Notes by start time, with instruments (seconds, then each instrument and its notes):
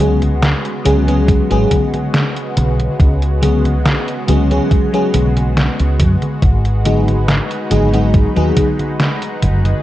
Already playing: fretless electric bass C#2, analog synth pad C#3 G#3 B3 F#4
0.00 fm electric piano F#3 G#3 B3 C#4 G#4, closed hi-hat, high conga
0.22 closed hi-hat, high conga
0.43 snare, closed hi-hat, high conga
0.65 closed hi-hat
0.84 fretless electric bass C#2, fm electric piano F#3 G#3 B3 C#4 G#4, closed hi-hat, high conga
1.07 fm electric piano F#3 G#3 B3 C#4 G#4, closed hi-hat, high conga
1.28 kick, closed hi-hat, high conga
1.50 fretless electric bass G#1, fm electric piano F#3 G#3 B3 C#4 G#4, closed hi-hat
1.71 kick, closed hi-hat, high conga
1.94 closed hi-hat, high conga
2.14 snare, closed hi-hat, high conga
2.37 closed hi-hat
2.57 fretless electric bass B1, closed hi-hat, high conga
2.80 closed hi-hat, high conga
3.00 fretless electric bass C#2, kick, closed hi-hat, high conga
3.22 closed hi-hat
3.41 fm electric piano F#3 G#3 B3 C#4 G#4, closed hi-hat, high conga
3.65 closed hi-hat, high conga
3.86 snare, closed hi-hat, high conga
4.08 closed hi-hat
4.28 fretless electric bass C#2, fm electric piano F#3 G#3 B3 C#4 G#4, closed hi-hat, high conga
4.50 fm electric piano F#3 G#3 B3 C#4 G#4, closed hi-hat, high conga
4.71 kick, closed hi-hat, high conga
4.93 fm electric piano F#3 G#3 B3 C#4 G#4, closed hi-hat
5.14 fretless electric bass B1, closed hi-hat, high conga
5.37 closed hi-hat, high conga
5.57 snare, closed hi-hat, high conga
5.80 fretless electric bass C#2, closed hi-hat
6.00 fretless electric bass F#2, kick, closed hi-hat, high conga
6.22 closed hi-hat, high conga
6.43 fretless electric bass G#1, analog synth pad D#4 B4, kick, closed hi-hat, high conga
6.65 closed hi-hat
6.85 fm electric piano F#3 G#3 B3 D#4 G#4, closed hi-hat, high conga
7.08 closed hi-hat, high conga
7.28 snare, closed hi-hat, high conga
7.51 closed hi-hat
7.70 fretless electric bass G#1, fm electric piano F#3 G#3 B3 D#4 G#4, closed hi-hat, high conga
7.93 fm electric piano F#3 G#3 B3 D#4 G#4, closed hi-hat, high conga
8.14 kick, closed hi-hat, high conga
8.36 fretless electric bass D#2, fm electric piano F#3 G#3 B3 D#4 G#4, closed hi-hat
8.57 kick, closed hi-hat, high conga
8.79 closed hi-hat, high conga
9.00 snare, closed hi-hat, high conga
9.22 closed hi-hat
9.42 fretless electric bass F#1, closed hi-hat, high conga
9.65 closed hi-hat, high conga